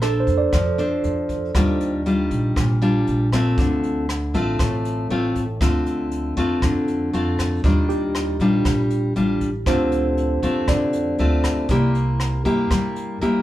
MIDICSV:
0, 0, Header, 1, 5, 480
1, 0, Start_track
1, 0, Tempo, 507614
1, 1461, Time_signature, 4, 2, 24, 8
1, 12692, End_track
2, 0, Start_track
2, 0, Title_t, "Tine electric piano"
2, 0, Program_c, 0, 4
2, 0, Control_c, 0, 64, 127
2, 19, Note_on_c, 0, 69, 38
2, 191, Note_on_c, 0, 72, 33
2, 356, Note_on_c, 0, 74, 35
2, 1471, Control_c, 0, 64, 0
2, 1664, Note_off_c, 0, 69, 0
2, 1810, Note_off_c, 0, 72, 0
2, 1952, Note_off_c, 0, 74, 0
2, 7390, Control_c, 0, 64, 127
2, 7461, Note_on_c, 0, 67, 50
2, 9145, Note_on_c, 0, 72, 35
2, 9155, Control_c, 0, 64, 0
2, 9299, Control_c, 0, 64, 127
2, 9303, Note_off_c, 0, 67, 0
2, 10101, Note_on_c, 0, 74, 31
2, 10984, Note_off_c, 0, 72, 0
2, 11074, Control_c, 0, 64, 0
2, 11262, Note_off_c, 0, 74, 0
2, 12692, End_track
3, 0, Start_track
3, 0, Title_t, "Nylon-string guitar"
3, 0, Program_c, 1, 24
3, 0, Note_on_c, 1, 58, 46
3, 19, Note_on_c, 1, 62, 44
3, 24, Note_on_c, 1, 69, 45
3, 26, Note_on_c, 1, 72, 44
3, 473, Note_off_c, 1, 58, 0
3, 497, Note_off_c, 1, 62, 0
3, 498, Note_off_c, 1, 69, 0
3, 500, Note_off_c, 1, 72, 0
3, 501, Note_on_c, 1, 53, 50
3, 739, Note_on_c, 1, 62, 46
3, 747, Note_on_c, 1, 69, 47
3, 748, Note_on_c, 1, 72, 52
3, 1438, Note_off_c, 1, 53, 0
3, 1442, Note_off_c, 1, 62, 0
3, 1444, Note_off_c, 1, 69, 0
3, 1446, Note_off_c, 1, 72, 0
3, 1463, Note_on_c, 1, 51, 51
3, 1464, Note_on_c, 1, 55, 49
3, 1467, Note_on_c, 1, 62, 46
3, 1472, Note_on_c, 1, 65, 47
3, 1904, Note_off_c, 1, 55, 0
3, 1906, Note_off_c, 1, 62, 0
3, 1909, Note_off_c, 1, 65, 0
3, 1948, Note_on_c, 1, 55, 49
3, 1954, Note_on_c, 1, 62, 44
3, 1957, Note_on_c, 1, 65, 44
3, 2399, Note_off_c, 1, 51, 0
3, 2421, Note_on_c, 1, 46, 51
3, 2627, Note_off_c, 1, 55, 0
3, 2630, Note_off_c, 1, 62, 0
3, 2631, Note_off_c, 1, 65, 0
3, 2663, Note_on_c, 1, 55, 46
3, 2669, Note_on_c, 1, 62, 56
3, 2672, Note_on_c, 1, 65, 58
3, 3105, Note_off_c, 1, 55, 0
3, 3108, Note_off_c, 1, 62, 0
3, 3108, Note_off_c, 1, 65, 0
3, 3150, Note_on_c, 1, 57, 60
3, 3156, Note_on_c, 1, 60, 62
3, 3157, Note_on_c, 1, 65, 58
3, 3358, Note_off_c, 1, 46, 0
3, 3392, Note_on_c, 1, 50, 49
3, 3829, Note_off_c, 1, 57, 0
3, 3830, Note_off_c, 1, 60, 0
3, 3832, Note_off_c, 1, 65, 0
3, 4108, Note_on_c, 1, 57, 56
3, 4113, Note_on_c, 1, 60, 53
3, 4118, Note_on_c, 1, 65, 53
3, 4324, Note_off_c, 1, 50, 0
3, 4348, Note_on_c, 1, 45, 53
3, 4787, Note_off_c, 1, 57, 0
3, 4790, Note_off_c, 1, 60, 0
3, 4791, Note_off_c, 1, 65, 0
3, 4826, Note_on_c, 1, 57, 51
3, 4832, Note_on_c, 1, 60, 51
3, 4837, Note_on_c, 1, 65, 55
3, 5134, Note_off_c, 1, 57, 0
3, 5137, Note_off_c, 1, 60, 0
3, 5138, Note_off_c, 1, 65, 0
3, 5282, Note_off_c, 1, 45, 0
3, 5302, Note_on_c, 1, 50, 43
3, 5306, Note_on_c, 1, 57, 46
3, 5308, Note_on_c, 1, 60, 42
3, 5312, Note_on_c, 1, 65, 52
3, 5985, Note_off_c, 1, 57, 0
3, 5987, Note_off_c, 1, 60, 0
3, 5989, Note_off_c, 1, 65, 0
3, 6022, Note_on_c, 1, 57, 52
3, 6028, Note_on_c, 1, 60, 51
3, 6035, Note_on_c, 1, 65, 60
3, 6239, Note_off_c, 1, 50, 0
3, 6267, Note_on_c, 1, 50, 48
3, 6705, Note_off_c, 1, 57, 0
3, 6706, Note_off_c, 1, 60, 0
3, 6710, Note_off_c, 1, 65, 0
3, 6746, Note_on_c, 1, 57, 52
3, 6751, Note_on_c, 1, 60, 49
3, 6757, Note_on_c, 1, 65, 58
3, 7186, Note_off_c, 1, 57, 0
3, 7189, Note_off_c, 1, 60, 0
3, 7190, Note_off_c, 1, 65, 0
3, 7201, Note_off_c, 1, 50, 0
3, 7228, Note_on_c, 1, 51, 46
3, 7231, Note_on_c, 1, 55, 48
3, 7234, Note_on_c, 1, 62, 45
3, 7240, Note_on_c, 1, 65, 50
3, 7908, Note_off_c, 1, 55, 0
3, 7910, Note_off_c, 1, 62, 0
3, 7911, Note_off_c, 1, 65, 0
3, 7950, Note_on_c, 1, 55, 51
3, 7954, Note_on_c, 1, 62, 51
3, 7957, Note_on_c, 1, 65, 54
3, 8161, Note_off_c, 1, 51, 0
3, 8628, Note_off_c, 1, 55, 0
3, 8629, Note_off_c, 1, 62, 0
3, 8631, Note_off_c, 1, 65, 0
3, 8661, Note_on_c, 1, 55, 49
3, 8667, Note_on_c, 1, 62, 48
3, 8670, Note_on_c, 1, 65, 54
3, 8971, Note_off_c, 1, 55, 0
3, 8972, Note_off_c, 1, 62, 0
3, 8975, Note_off_c, 1, 65, 0
3, 9143, Note_on_c, 1, 50, 46
3, 9146, Note_on_c, 1, 57, 45
3, 9153, Note_on_c, 1, 65, 54
3, 9155, Note_on_c, 1, 60, 44
3, 9824, Note_off_c, 1, 57, 0
3, 9826, Note_off_c, 1, 60, 0
3, 9828, Note_off_c, 1, 65, 0
3, 9860, Note_on_c, 1, 57, 51
3, 9867, Note_on_c, 1, 60, 54
3, 9870, Note_on_c, 1, 65, 56
3, 10079, Note_off_c, 1, 50, 0
3, 10102, Note_on_c, 1, 50, 51
3, 10542, Note_off_c, 1, 57, 0
3, 10544, Note_off_c, 1, 60, 0
3, 10547, Note_off_c, 1, 65, 0
3, 10584, Note_on_c, 1, 57, 52
3, 10592, Note_on_c, 1, 60, 50
3, 10595, Note_on_c, 1, 65, 55
3, 11024, Note_off_c, 1, 57, 0
3, 11028, Note_off_c, 1, 60, 0
3, 11028, Note_off_c, 1, 65, 0
3, 11036, Note_off_c, 1, 50, 0
3, 11063, Note_on_c, 1, 48, 52
3, 11067, Note_on_c, 1, 58, 50
3, 11071, Note_on_c, 1, 64, 50
3, 11071, Note_on_c, 1, 67, 57
3, 11744, Note_off_c, 1, 58, 0
3, 11744, Note_off_c, 1, 64, 0
3, 11746, Note_off_c, 1, 67, 0
3, 11773, Note_on_c, 1, 58, 54
3, 11778, Note_on_c, 1, 64, 51
3, 11782, Note_on_c, 1, 67, 58
3, 11997, Note_off_c, 1, 48, 0
3, 12016, Note_on_c, 1, 55, 50
3, 12458, Note_off_c, 1, 58, 0
3, 12459, Note_off_c, 1, 64, 0
3, 12460, Note_off_c, 1, 67, 0
3, 12495, Note_on_c, 1, 58, 52
3, 12502, Note_on_c, 1, 64, 52
3, 12506, Note_on_c, 1, 67, 51
3, 12692, Note_off_c, 1, 55, 0
3, 12692, Note_off_c, 1, 58, 0
3, 12692, Note_off_c, 1, 64, 0
3, 12692, Note_off_c, 1, 67, 0
3, 12692, End_track
4, 0, Start_track
4, 0, Title_t, "Upright bass"
4, 0, Program_c, 2, 32
4, 0, Note_on_c, 2, 34, 88
4, 217, Note_off_c, 2, 34, 0
4, 255, Note_on_c, 2, 41, 75
4, 480, Note_off_c, 2, 41, 0
4, 500, Note_on_c, 2, 41, 69
4, 947, Note_off_c, 2, 41, 0
4, 981, Note_on_c, 2, 41, 73
4, 1428, Note_off_c, 2, 41, 0
4, 1464, Note_on_c, 2, 39, 89
4, 2145, Note_off_c, 2, 39, 0
4, 2184, Note_on_c, 2, 34, 77
4, 2406, Note_off_c, 2, 34, 0
4, 2424, Note_on_c, 2, 34, 77
4, 2870, Note_off_c, 2, 34, 0
4, 2907, Note_on_c, 2, 34, 74
4, 3351, Note_off_c, 2, 34, 0
4, 3384, Note_on_c, 2, 38, 87
4, 4066, Note_off_c, 2, 38, 0
4, 4104, Note_on_c, 2, 33, 75
4, 4327, Note_off_c, 2, 33, 0
4, 4345, Note_on_c, 2, 33, 78
4, 4791, Note_off_c, 2, 33, 0
4, 4824, Note_on_c, 2, 33, 70
4, 5270, Note_off_c, 2, 33, 0
4, 5302, Note_on_c, 2, 38, 84
4, 5985, Note_off_c, 2, 38, 0
4, 6024, Note_on_c, 2, 41, 77
4, 6247, Note_off_c, 2, 41, 0
4, 6265, Note_on_c, 2, 41, 71
4, 6710, Note_off_c, 2, 41, 0
4, 6750, Note_on_c, 2, 41, 74
4, 7193, Note_off_c, 2, 41, 0
4, 7222, Note_on_c, 2, 39, 89
4, 7905, Note_off_c, 2, 39, 0
4, 7939, Note_on_c, 2, 34, 70
4, 8164, Note_off_c, 2, 34, 0
4, 8183, Note_on_c, 2, 34, 68
4, 8629, Note_off_c, 2, 34, 0
4, 8667, Note_on_c, 2, 33, 73
4, 9111, Note_off_c, 2, 33, 0
4, 9138, Note_on_c, 2, 38, 85
4, 9822, Note_off_c, 2, 38, 0
4, 9860, Note_on_c, 2, 41, 76
4, 10084, Note_off_c, 2, 41, 0
4, 10098, Note_on_c, 2, 41, 76
4, 10545, Note_off_c, 2, 41, 0
4, 10582, Note_on_c, 2, 38, 73
4, 11027, Note_off_c, 2, 38, 0
4, 11054, Note_on_c, 2, 36, 80
4, 11738, Note_off_c, 2, 36, 0
4, 11776, Note_on_c, 2, 43, 86
4, 12000, Note_off_c, 2, 43, 0
4, 12014, Note_on_c, 2, 43, 73
4, 12462, Note_off_c, 2, 43, 0
4, 12495, Note_on_c, 2, 43, 73
4, 12692, Note_off_c, 2, 43, 0
4, 12692, End_track
5, 0, Start_track
5, 0, Title_t, "Drums"
5, 17, Note_on_c, 9, 37, 47
5, 17, Note_on_c, 9, 42, 39
5, 111, Note_off_c, 9, 37, 0
5, 111, Note_off_c, 9, 42, 0
5, 256, Note_on_c, 9, 36, 22
5, 258, Note_on_c, 9, 42, 41
5, 350, Note_off_c, 9, 36, 0
5, 353, Note_off_c, 9, 42, 0
5, 497, Note_on_c, 9, 37, 52
5, 497, Note_on_c, 9, 42, 50
5, 499, Note_on_c, 9, 36, 48
5, 592, Note_off_c, 9, 37, 0
5, 592, Note_off_c, 9, 42, 0
5, 593, Note_off_c, 9, 36, 0
5, 741, Note_on_c, 9, 42, 37
5, 835, Note_off_c, 9, 42, 0
5, 981, Note_on_c, 9, 42, 36
5, 1075, Note_off_c, 9, 42, 0
5, 1221, Note_on_c, 9, 36, 23
5, 1222, Note_on_c, 9, 42, 38
5, 1316, Note_off_c, 9, 36, 0
5, 1317, Note_off_c, 9, 42, 0
5, 1463, Note_on_c, 9, 36, 52
5, 1463, Note_on_c, 9, 37, 53
5, 1463, Note_on_c, 9, 42, 52
5, 1557, Note_off_c, 9, 36, 0
5, 1557, Note_off_c, 9, 37, 0
5, 1557, Note_off_c, 9, 42, 0
5, 1707, Note_on_c, 9, 42, 40
5, 1801, Note_off_c, 9, 42, 0
5, 1946, Note_on_c, 9, 42, 35
5, 2040, Note_off_c, 9, 42, 0
5, 2183, Note_on_c, 9, 42, 41
5, 2184, Note_on_c, 9, 36, 22
5, 2278, Note_off_c, 9, 42, 0
5, 2279, Note_off_c, 9, 36, 0
5, 2425, Note_on_c, 9, 36, 52
5, 2428, Note_on_c, 9, 37, 53
5, 2428, Note_on_c, 9, 42, 47
5, 2519, Note_off_c, 9, 36, 0
5, 2522, Note_off_c, 9, 37, 0
5, 2522, Note_off_c, 9, 42, 0
5, 2668, Note_on_c, 9, 42, 35
5, 2762, Note_off_c, 9, 42, 0
5, 2904, Note_on_c, 9, 42, 36
5, 2999, Note_off_c, 9, 42, 0
5, 3143, Note_on_c, 9, 36, 22
5, 3144, Note_on_c, 9, 37, 53
5, 3144, Note_on_c, 9, 42, 38
5, 3238, Note_off_c, 9, 36, 0
5, 3239, Note_off_c, 9, 37, 0
5, 3239, Note_off_c, 9, 42, 0
5, 3383, Note_on_c, 9, 42, 47
5, 3384, Note_on_c, 9, 36, 55
5, 3477, Note_off_c, 9, 42, 0
5, 3478, Note_off_c, 9, 36, 0
5, 3626, Note_on_c, 9, 42, 38
5, 3720, Note_off_c, 9, 42, 0
5, 3868, Note_on_c, 9, 37, 53
5, 3868, Note_on_c, 9, 42, 37
5, 3962, Note_off_c, 9, 37, 0
5, 3962, Note_off_c, 9, 42, 0
5, 4104, Note_on_c, 9, 36, 21
5, 4109, Note_on_c, 9, 42, 40
5, 4198, Note_off_c, 9, 36, 0
5, 4204, Note_off_c, 9, 42, 0
5, 4343, Note_on_c, 9, 36, 49
5, 4344, Note_on_c, 9, 37, 53
5, 4344, Note_on_c, 9, 42, 53
5, 4437, Note_off_c, 9, 36, 0
5, 4438, Note_off_c, 9, 37, 0
5, 4438, Note_off_c, 9, 42, 0
5, 4585, Note_on_c, 9, 42, 38
5, 4680, Note_off_c, 9, 42, 0
5, 4825, Note_on_c, 9, 42, 37
5, 4919, Note_off_c, 9, 42, 0
5, 5063, Note_on_c, 9, 36, 23
5, 5065, Note_on_c, 9, 42, 42
5, 5157, Note_off_c, 9, 36, 0
5, 5160, Note_off_c, 9, 42, 0
5, 5303, Note_on_c, 9, 36, 56
5, 5305, Note_on_c, 9, 37, 54
5, 5305, Note_on_c, 9, 42, 53
5, 5397, Note_off_c, 9, 36, 0
5, 5399, Note_off_c, 9, 37, 0
5, 5399, Note_off_c, 9, 42, 0
5, 5544, Note_on_c, 9, 42, 39
5, 5639, Note_off_c, 9, 42, 0
5, 5782, Note_on_c, 9, 42, 42
5, 5877, Note_off_c, 9, 42, 0
5, 6022, Note_on_c, 9, 42, 40
5, 6023, Note_on_c, 9, 36, 22
5, 6117, Note_off_c, 9, 36, 0
5, 6117, Note_off_c, 9, 42, 0
5, 6262, Note_on_c, 9, 36, 53
5, 6262, Note_on_c, 9, 37, 51
5, 6262, Note_on_c, 9, 42, 50
5, 6356, Note_off_c, 9, 37, 0
5, 6356, Note_off_c, 9, 42, 0
5, 6357, Note_off_c, 9, 36, 0
5, 6504, Note_on_c, 9, 42, 38
5, 6598, Note_off_c, 9, 42, 0
5, 6748, Note_on_c, 9, 42, 36
5, 6842, Note_off_c, 9, 42, 0
5, 6984, Note_on_c, 9, 36, 22
5, 6988, Note_on_c, 9, 37, 52
5, 6988, Note_on_c, 9, 42, 38
5, 7078, Note_off_c, 9, 36, 0
5, 7082, Note_off_c, 9, 37, 0
5, 7082, Note_off_c, 9, 42, 0
5, 7224, Note_on_c, 9, 36, 55
5, 7224, Note_on_c, 9, 42, 50
5, 7319, Note_off_c, 9, 36, 0
5, 7319, Note_off_c, 9, 42, 0
5, 7467, Note_on_c, 9, 42, 37
5, 7562, Note_off_c, 9, 42, 0
5, 7705, Note_on_c, 9, 37, 51
5, 7705, Note_on_c, 9, 42, 38
5, 7799, Note_off_c, 9, 37, 0
5, 7799, Note_off_c, 9, 42, 0
5, 7941, Note_on_c, 9, 36, 22
5, 7943, Note_on_c, 9, 42, 38
5, 8036, Note_off_c, 9, 36, 0
5, 8037, Note_off_c, 9, 42, 0
5, 8181, Note_on_c, 9, 36, 55
5, 8182, Note_on_c, 9, 37, 55
5, 8182, Note_on_c, 9, 42, 52
5, 8276, Note_off_c, 9, 36, 0
5, 8276, Note_off_c, 9, 37, 0
5, 8276, Note_off_c, 9, 42, 0
5, 8420, Note_on_c, 9, 42, 39
5, 8514, Note_off_c, 9, 42, 0
5, 8659, Note_on_c, 9, 42, 37
5, 8753, Note_off_c, 9, 42, 0
5, 8898, Note_on_c, 9, 42, 43
5, 8899, Note_on_c, 9, 36, 22
5, 8992, Note_off_c, 9, 42, 0
5, 8994, Note_off_c, 9, 36, 0
5, 9137, Note_on_c, 9, 37, 54
5, 9137, Note_on_c, 9, 42, 56
5, 9138, Note_on_c, 9, 36, 53
5, 9232, Note_off_c, 9, 36, 0
5, 9232, Note_off_c, 9, 37, 0
5, 9232, Note_off_c, 9, 42, 0
5, 9378, Note_on_c, 9, 42, 39
5, 9472, Note_off_c, 9, 42, 0
5, 9621, Note_on_c, 9, 42, 39
5, 9715, Note_off_c, 9, 42, 0
5, 9858, Note_on_c, 9, 36, 21
5, 9861, Note_on_c, 9, 42, 43
5, 9953, Note_off_c, 9, 36, 0
5, 9955, Note_off_c, 9, 42, 0
5, 10095, Note_on_c, 9, 37, 53
5, 10095, Note_on_c, 9, 42, 52
5, 10097, Note_on_c, 9, 36, 54
5, 10190, Note_off_c, 9, 37, 0
5, 10190, Note_off_c, 9, 42, 0
5, 10192, Note_off_c, 9, 36, 0
5, 10334, Note_on_c, 9, 42, 41
5, 10428, Note_off_c, 9, 42, 0
5, 10574, Note_on_c, 9, 42, 36
5, 10669, Note_off_c, 9, 42, 0
5, 10816, Note_on_c, 9, 36, 22
5, 10816, Note_on_c, 9, 37, 59
5, 10816, Note_on_c, 9, 42, 38
5, 10910, Note_off_c, 9, 36, 0
5, 10911, Note_off_c, 9, 37, 0
5, 10911, Note_off_c, 9, 42, 0
5, 11050, Note_on_c, 9, 42, 50
5, 11054, Note_on_c, 9, 36, 54
5, 11145, Note_off_c, 9, 42, 0
5, 11149, Note_off_c, 9, 36, 0
5, 11297, Note_on_c, 9, 42, 36
5, 11391, Note_off_c, 9, 42, 0
5, 11534, Note_on_c, 9, 37, 49
5, 11534, Note_on_c, 9, 42, 36
5, 11629, Note_off_c, 9, 37, 0
5, 11629, Note_off_c, 9, 42, 0
5, 11775, Note_on_c, 9, 36, 21
5, 11777, Note_on_c, 9, 42, 37
5, 11870, Note_off_c, 9, 36, 0
5, 11871, Note_off_c, 9, 42, 0
5, 12015, Note_on_c, 9, 36, 52
5, 12016, Note_on_c, 9, 37, 51
5, 12016, Note_on_c, 9, 42, 47
5, 12109, Note_off_c, 9, 36, 0
5, 12110, Note_off_c, 9, 37, 0
5, 12110, Note_off_c, 9, 42, 0
5, 12255, Note_on_c, 9, 42, 34
5, 12349, Note_off_c, 9, 42, 0
5, 12497, Note_on_c, 9, 42, 35
5, 12592, Note_off_c, 9, 42, 0
5, 12692, End_track
0, 0, End_of_file